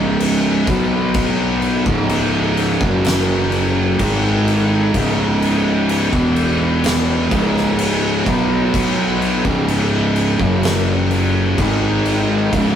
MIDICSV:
0, 0, Header, 1, 4, 480
1, 0, Start_track
1, 0, Key_signature, 4, "minor"
1, 0, Tempo, 947867
1, 582, Time_signature, 4, 2, 24, 8
1, 6459, End_track
2, 0, Start_track
2, 0, Title_t, "Distorted electric guitar"
2, 0, Program_c, 0, 30
2, 0, Note_on_c, 0, 37, 99
2, 0, Note_on_c, 0, 44, 105
2, 0, Note_on_c, 0, 49, 107
2, 337, Note_off_c, 0, 37, 0
2, 338, Note_off_c, 0, 44, 0
2, 340, Note_off_c, 0, 49, 0
2, 344, Note_on_c, 0, 47, 88
2, 348, Note_on_c, 0, 54, 98
2, 350, Note_on_c, 0, 59, 109
2, 937, Note_off_c, 0, 47, 0
2, 938, Note_off_c, 0, 54, 0
2, 940, Note_off_c, 0, 59, 0
2, 942, Note_on_c, 0, 37, 87
2, 945, Note_on_c, 0, 44, 104
2, 948, Note_on_c, 0, 49, 108
2, 1415, Note_off_c, 0, 37, 0
2, 1417, Note_off_c, 0, 44, 0
2, 1418, Note_off_c, 0, 49, 0
2, 1424, Note_on_c, 0, 42, 92
2, 1429, Note_on_c, 0, 49, 98
2, 1430, Note_on_c, 0, 54, 93
2, 2016, Note_off_c, 0, 42, 0
2, 2019, Note_off_c, 0, 49, 0
2, 2020, Note_off_c, 0, 54, 0
2, 2025, Note_on_c, 0, 44, 90
2, 2026, Note_on_c, 0, 51, 108
2, 2028, Note_on_c, 0, 56, 103
2, 2497, Note_off_c, 0, 44, 0
2, 2498, Note_off_c, 0, 51, 0
2, 2499, Note_off_c, 0, 56, 0
2, 2504, Note_on_c, 0, 37, 98
2, 2509, Note_on_c, 0, 44, 114
2, 2512, Note_on_c, 0, 49, 110
2, 3097, Note_off_c, 0, 37, 0
2, 3099, Note_off_c, 0, 44, 0
2, 3100, Note_off_c, 0, 49, 0
2, 3101, Note_on_c, 0, 40, 92
2, 3105, Note_on_c, 0, 47, 98
2, 3108, Note_on_c, 0, 52, 87
2, 3695, Note_off_c, 0, 40, 0
2, 3697, Note_off_c, 0, 47, 0
2, 3699, Note_off_c, 0, 52, 0
2, 3704, Note_on_c, 0, 37, 95
2, 3707, Note_on_c, 0, 44, 104
2, 3708, Note_on_c, 0, 49, 109
2, 4176, Note_off_c, 0, 37, 0
2, 4178, Note_off_c, 0, 44, 0
2, 4179, Note_off_c, 0, 49, 0
2, 4186, Note_on_c, 0, 47, 101
2, 4187, Note_on_c, 0, 54, 104
2, 4193, Note_on_c, 0, 59, 104
2, 4778, Note_off_c, 0, 47, 0
2, 4778, Note_off_c, 0, 54, 0
2, 4781, Note_off_c, 0, 59, 0
2, 4789, Note_on_c, 0, 37, 96
2, 4793, Note_on_c, 0, 44, 103
2, 4795, Note_on_c, 0, 49, 108
2, 5259, Note_off_c, 0, 37, 0
2, 5261, Note_off_c, 0, 44, 0
2, 5262, Note_off_c, 0, 49, 0
2, 5268, Note_on_c, 0, 42, 93
2, 5271, Note_on_c, 0, 49, 93
2, 5274, Note_on_c, 0, 54, 93
2, 5859, Note_off_c, 0, 42, 0
2, 5861, Note_off_c, 0, 49, 0
2, 5862, Note_off_c, 0, 54, 0
2, 5868, Note_on_c, 0, 44, 102
2, 5871, Note_on_c, 0, 51, 98
2, 5874, Note_on_c, 0, 56, 98
2, 6340, Note_off_c, 0, 44, 0
2, 6341, Note_off_c, 0, 51, 0
2, 6342, Note_off_c, 0, 56, 0
2, 6352, Note_on_c, 0, 37, 91
2, 6352, Note_on_c, 0, 44, 113
2, 6355, Note_on_c, 0, 49, 110
2, 6459, Note_off_c, 0, 37, 0
2, 6459, Note_off_c, 0, 44, 0
2, 6459, Note_off_c, 0, 49, 0
2, 6459, End_track
3, 0, Start_track
3, 0, Title_t, "Fingered electric bass"
3, 0, Program_c, 1, 33
3, 0, Note_on_c, 1, 25, 93
3, 321, Note_off_c, 1, 25, 0
3, 341, Note_on_c, 1, 35, 97
3, 922, Note_off_c, 1, 35, 0
3, 943, Note_on_c, 1, 25, 93
3, 1403, Note_off_c, 1, 25, 0
3, 1424, Note_on_c, 1, 30, 101
3, 2004, Note_off_c, 1, 30, 0
3, 2023, Note_on_c, 1, 32, 92
3, 2483, Note_off_c, 1, 32, 0
3, 2506, Note_on_c, 1, 25, 106
3, 3085, Note_off_c, 1, 25, 0
3, 3102, Note_on_c, 1, 28, 98
3, 3683, Note_off_c, 1, 28, 0
3, 3704, Note_on_c, 1, 25, 94
3, 4164, Note_off_c, 1, 25, 0
3, 4187, Note_on_c, 1, 35, 96
3, 4765, Note_off_c, 1, 35, 0
3, 4786, Note_on_c, 1, 25, 93
3, 5245, Note_off_c, 1, 25, 0
3, 5264, Note_on_c, 1, 30, 100
3, 5844, Note_off_c, 1, 30, 0
3, 5863, Note_on_c, 1, 32, 96
3, 6324, Note_off_c, 1, 32, 0
3, 6345, Note_on_c, 1, 25, 100
3, 6459, Note_off_c, 1, 25, 0
3, 6459, End_track
4, 0, Start_track
4, 0, Title_t, "Drums"
4, 103, Note_on_c, 9, 49, 86
4, 154, Note_off_c, 9, 49, 0
4, 339, Note_on_c, 9, 49, 64
4, 341, Note_on_c, 9, 36, 114
4, 390, Note_off_c, 9, 49, 0
4, 392, Note_off_c, 9, 36, 0
4, 578, Note_on_c, 9, 49, 86
4, 581, Note_on_c, 9, 36, 112
4, 629, Note_off_c, 9, 49, 0
4, 632, Note_off_c, 9, 36, 0
4, 820, Note_on_c, 9, 49, 60
4, 871, Note_off_c, 9, 49, 0
4, 942, Note_on_c, 9, 36, 112
4, 993, Note_off_c, 9, 36, 0
4, 1060, Note_on_c, 9, 49, 81
4, 1111, Note_off_c, 9, 49, 0
4, 1302, Note_on_c, 9, 49, 59
4, 1353, Note_off_c, 9, 49, 0
4, 1422, Note_on_c, 9, 36, 108
4, 1473, Note_off_c, 9, 36, 0
4, 1542, Note_on_c, 9, 49, 84
4, 1553, Note_on_c, 9, 38, 117
4, 1593, Note_off_c, 9, 49, 0
4, 1604, Note_off_c, 9, 38, 0
4, 1782, Note_on_c, 9, 49, 60
4, 1833, Note_off_c, 9, 49, 0
4, 2023, Note_on_c, 9, 36, 113
4, 2023, Note_on_c, 9, 49, 86
4, 2073, Note_off_c, 9, 36, 0
4, 2074, Note_off_c, 9, 49, 0
4, 2266, Note_on_c, 9, 49, 62
4, 2317, Note_off_c, 9, 49, 0
4, 2503, Note_on_c, 9, 36, 108
4, 2503, Note_on_c, 9, 49, 88
4, 2554, Note_off_c, 9, 36, 0
4, 2554, Note_off_c, 9, 49, 0
4, 2746, Note_on_c, 9, 49, 65
4, 2797, Note_off_c, 9, 49, 0
4, 2983, Note_on_c, 9, 49, 88
4, 3034, Note_off_c, 9, 49, 0
4, 3104, Note_on_c, 9, 36, 106
4, 3154, Note_off_c, 9, 36, 0
4, 3222, Note_on_c, 9, 49, 67
4, 3272, Note_off_c, 9, 49, 0
4, 3463, Note_on_c, 9, 49, 93
4, 3474, Note_on_c, 9, 38, 119
4, 3514, Note_off_c, 9, 49, 0
4, 3525, Note_off_c, 9, 38, 0
4, 3704, Note_on_c, 9, 36, 107
4, 3704, Note_on_c, 9, 49, 66
4, 3755, Note_off_c, 9, 36, 0
4, 3755, Note_off_c, 9, 49, 0
4, 3834, Note_on_c, 9, 38, 34
4, 3885, Note_off_c, 9, 38, 0
4, 3943, Note_on_c, 9, 49, 93
4, 3994, Note_off_c, 9, 49, 0
4, 4185, Note_on_c, 9, 36, 106
4, 4187, Note_on_c, 9, 49, 64
4, 4236, Note_off_c, 9, 36, 0
4, 4238, Note_off_c, 9, 49, 0
4, 4426, Note_on_c, 9, 36, 115
4, 4429, Note_on_c, 9, 49, 90
4, 4477, Note_off_c, 9, 36, 0
4, 4480, Note_off_c, 9, 49, 0
4, 4668, Note_on_c, 9, 49, 63
4, 4719, Note_off_c, 9, 49, 0
4, 4785, Note_on_c, 9, 36, 108
4, 4836, Note_off_c, 9, 36, 0
4, 4904, Note_on_c, 9, 49, 82
4, 4954, Note_off_c, 9, 49, 0
4, 5143, Note_on_c, 9, 49, 64
4, 5194, Note_off_c, 9, 49, 0
4, 5264, Note_on_c, 9, 36, 102
4, 5315, Note_off_c, 9, 36, 0
4, 5383, Note_on_c, 9, 49, 84
4, 5395, Note_on_c, 9, 38, 118
4, 5434, Note_off_c, 9, 49, 0
4, 5445, Note_off_c, 9, 38, 0
4, 5624, Note_on_c, 9, 49, 61
4, 5674, Note_off_c, 9, 49, 0
4, 5865, Note_on_c, 9, 36, 114
4, 5865, Note_on_c, 9, 49, 84
4, 5916, Note_off_c, 9, 36, 0
4, 5916, Note_off_c, 9, 49, 0
4, 6104, Note_on_c, 9, 49, 57
4, 6155, Note_off_c, 9, 49, 0
4, 6343, Note_on_c, 9, 49, 80
4, 6344, Note_on_c, 9, 36, 104
4, 6394, Note_off_c, 9, 49, 0
4, 6395, Note_off_c, 9, 36, 0
4, 6459, End_track
0, 0, End_of_file